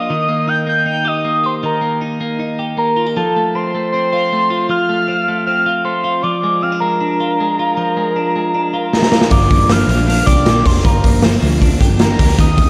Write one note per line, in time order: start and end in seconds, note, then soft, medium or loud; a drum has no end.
0.00 0.28 A#3 medium
0.00 0.13 D4 medium
0.00 0.13 F4 medium
0.00 0.50 D#6 loud
0.10 1.62 D#3 medium
0.29 0.65 A#3 medium
0.47 0.85 D#4 medium
0.47 0.67 G6 loud
0.67 1.23 A#3 medium
0.67 0.86 G6 loud
0.86 2.00 D#4 medium
0.86 1.09 G6 loud
1.05 1.43 G4 medium
1.05 1.45 D#6 loud
1.25 1.80 A#3 medium
1.44 2.58 G4 medium
1.44 1.54 C6 medium
1.63 3.16 D#3 medium
1.63 2.00 A#5 medium
1.82 2.19 A#3 medium
2.02 2.38 D#4 medium
2.21 2.76 A#3 medium
2.40 3.20 D#4 medium
2.59 2.96 G4 medium
2.77 3.20 A#3 medium
2.77 3.14 A#5 loud
2.96 3.07 F4 medium
3.07 3.20 G4 medium
3.17 4.69 F3 medium
3.17 3.56 A5 loud
3.36 3.74 A3 medium
3.55 3.93 C4 medium
3.55 3.92 C6 loud
3.75 4.31 A3 medium
3.92 5.07 C4 medium
3.92 4.10 C6 loud
4.12 4.50 F4 medium
4.12 4.66 C6 loud
4.33 4.88 A3 medium
4.50 5.66 F4 medium
4.69 6.23 F3 medium
4.69 5.43 F6 loud
4.89 5.27 A3 medium
5.08 5.46 C4 medium
5.28 5.84 A3 medium
5.47 6.28 C4 medium
5.47 5.82 F6 loud
5.66 6.04 F4 medium
5.85 6.27 A3 medium
5.85 6.24 C6 loud
6.04 7.20 F4 medium
6.23 7.77 F3 medium
6.23 6.64 D6 loud
6.43 6.80 G#3 medium
6.62 6.72 C4 medium
6.62 6.80 F6 loud
6.72 7.00 D4 medium
6.80 7.39 G#3 medium
6.80 8.88 A#5 loud
7.01 8.16 D4 medium
7.20 7.59 F4 medium
7.40 7.96 G#3 medium
7.59 8.73 F4 medium
7.77 9.31 F3 medium
7.97 8.34 G#3 medium
8.16 8.54 D4 medium
8.36 8.92 G#3 medium
8.55 9.69 D4 medium
8.74 9.11 F4 medium
8.93 9.35 G#3 medium
8.93 9.29 A#5 loud
8.93 snare medium
9.02 snare medium
9.12 10.26 F4 medium
9.12 snare medium
9.21 snare medium
9.31 9.47 G1 loud
9.31 9.50 G2 medium
9.31 9.50 D3 medium
9.31 10.83 F3 medium
9.31 9.51 F3 medium
9.31 9.50 A#3 medium
9.31 9.49 D4 medium
9.31 9.73 D6 loud
9.31 kick loud
9.31 open hi-hat medium
9.50 9.83 G1 loud
9.50 9.69 F3 soft
9.50 9.88 A#3 medium
9.50 9.69 A#3 medium
9.50 9.69 D4 medium
9.50 kick loud
9.50 hi-hat pedal medium
9.50 open hi-hat medium
9.69 9.88 G2 medium
9.69 9.89 D3 medium
9.69 9.89 F3 medium
9.69 9.89 A#3 medium
9.69 10.07 D4 medium
9.69 9.88 D4 medium
9.69 10.09 F6 loud
9.69 snare loud
9.69 hi-hat pedal medium
9.69 open hi-hat medium
9.88 10.21 A#1 medium
9.88 10.08 F3 soft
9.88 10.45 A#3 medium
9.88 10.09 A#3 medium
9.88 10.08 D4 medium
9.88 hi-hat pedal medium
9.88 open hi-hat medium
10.08 10.27 D3 medium
10.08 10.28 F3 medium
10.08 10.27 A#3 medium
10.08 11.23 D4 medium
10.08 10.25 D4 medium
10.08 10.26 F6 loud
10.08 hi-hat pedal medium
10.08 open hi-hat loud
10.26 10.43 C2 loud
10.26 10.46 F3 soft
10.26 10.46 A#3 soft
10.26 10.46 D4 medium
10.26 10.65 G4 medium
10.26 10.67 D6 loud
10.26 kick loud
10.26 hi-hat pedal medium
10.26 open hi-hat medium
10.46 10.63 A#1 medium
10.46 10.66 G2 medium
10.46 10.66 D3 medium
10.46 10.66 F3 medium
10.46 11.03 A#3 medium
10.46 10.65 A#3 medium
10.46 10.64 D4 medium
10.46 snare loud
10.46 hi-hat pedal medium
10.46 open hi-hat loud
10.65 10.82 F1 loud
10.65 10.84 F3 soft
10.65 10.84 D4 medium
10.65 11.80 G4 medium
10.65 10.87 C6 medium
10.65 kick loud
10.65 hi-hat pedal medium
10.65 open hi-hat medium
10.84 11.01 G1 loud
10.84 11.03 G2 medium
10.84 11.04 D3 medium
10.84 12.38 F3 medium
10.84 11.04 F3 medium
10.84 11.04 A#3 medium
10.84 11.02 D4 loud
10.84 11.24 A#5 medium
10.84 kick loud
10.84 hi-hat pedal medium
10.84 open hi-hat loud
11.03 11.37 G1 loud
11.03 11.22 F3 soft
11.03 11.41 A#3 medium
11.03 11.22 A#3 medium
11.03 11.23 D4 medium
11.03 kick loud
11.03 hi-hat pedal medium
11.03 open hi-hat medium
11.22 11.42 G2 medium
11.22 11.42 D3 medium
11.22 11.42 F3 medium
11.22 11.42 A#3 medium
11.22 11.32 C4 medium
11.22 11.41 D4 medium
11.22 snare loud
11.22 hi-hat pedal medium
11.22 open hi-hat loud
11.32 11.60 D4 medium
11.41 11.75 D2 medium
11.41 11.61 F3 medium
11.41 11.99 A#3 medium
11.41 11.62 A#3 medium
11.41 11.62 D4 medium
11.41 hi-hat pedal medium
11.41 open hi-hat medium
11.61 11.81 D3 medium
11.61 11.81 F3 medium
11.61 11.81 A#3 medium
11.61 12.42 D4 medium
11.61 11.80 D4 medium
11.61 kick medium
11.61 hi-hat pedal medium
11.61 open hi-hat medium
11.81 12.13 G1 medium
11.81 12.00 F3 medium
11.81 12.01 A#3 medium
11.81 12.00 D4 medium
11.81 12.19 G4 medium
11.81 kick medium
11.81 hi-hat pedal medium
11.81 open hi-hat medium
11.99 12.20 G2 medium
11.99 12.20 D3 medium
11.99 12.20 F3 medium
11.99 12.57 A#3 medium
11.99 12.20 A#3 medium
11.99 12.18 D4 medium
11.99 12.36 A#5 loud
11.99 snare loud
11.99 hi-hat pedal medium
11.99 open hi-hat loud
12.19 12.36 D2 loud
12.19 12.39 F3 medium
12.19 12.39 A#3 medium
12.19 12.39 D4 medium
12.19 12.70 G4 medium
12.19 kick loud
12.19 hi-hat pedal medium
12.19 open hi-hat medium
12.38 12.55 D#2 loud
12.38 12.70 D#3 medium
12.38 12.58 D#3 medium
12.38 12.58 G3 medium
12.38 12.57 A#3 medium
12.38 12.56 D#4 medium
12.38 12.70 D#6 loud
12.38 kick loud
12.38 hi-hat pedal medium
12.38 open hi-hat medium
12.57 12.70 D#2 medium
12.57 12.70 G3 soft
12.57 12.70 A#3 medium
12.57 12.70 D#4 medium
12.57 kick loud
12.57 hi-hat pedal medium
12.57 open hi-hat medium